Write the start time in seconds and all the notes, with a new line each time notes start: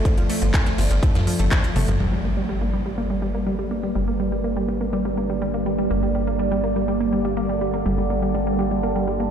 Already playing: F3 A3 C4 A4 D5
0.05 F3, kick, closed hi-hat, ride
0.17 G1 F3, closed hi-hat
0.30 A3, snare, open hi-hat, ride
0.42 G1 F3, closed hi-hat
0.53 F3, kick, snare, clap, closed hi-hat, ride
0.66 A3, snare, closed hi-hat
0.78 G1 F3, snare, open hi-hat, ride
0.91 G1 F3, closed hi-hat
1.03 A3, kick, closed hi-hat, ride
1.15 G2 F3, snare, closed hi-hat, ride
1.27 F3, open hi-hat
1.39 G1 A3, closed hi-hat, ride
1.51 F3, kick, snare, clap, closed hi-hat
1.64 F3, closed hi-hat, high tom
1.76 G1 A3, open hi-hat, mid tom, ride
1.88 G1 F3, closed hi-hat, mid tom, ride
2.00 G1 G2 D3 G3 A#3 D4 A#4 D5, impact
2.13 G3
2.25 A#3
2.37 G3
2.49 G3
2.61 A#3
2.73 G3
2.86 G3
2.98 A#3
3.10 G3
3.22 G3
3.35 A#3
3.47 G3
3.59 G3
3.71 A#3
3.83 G3
3.95 G1 G3
4.08 A#3
4.20 G3
4.32 G3
4.44 A#3
4.57 G3
4.69 G3
4.81 A#3
4.93 G3
5.05 G3
5.17 A#3
5.30 G3
5.42 G3
5.54 A#3
5.66 G3
5.78 G3
5.90 G1 A#3 A4
6.03 G3
6.15 G3
6.27 A#3
6.39 G3
6.52 G3
6.64 A#3
6.76 G3
6.88 G3
7.00 A#3
7.13 G3
7.25 G3
7.37 A#3
7.49 G3
7.61 G3
7.74 A#3
7.86 G1 G3
7.98 G3
8.10 A#3
8.22 G3
8.35 G3
8.47 A#3
8.59 G3
8.71 G3
8.83 A#3
8.96 G3
9.08 G3
9.20 A#3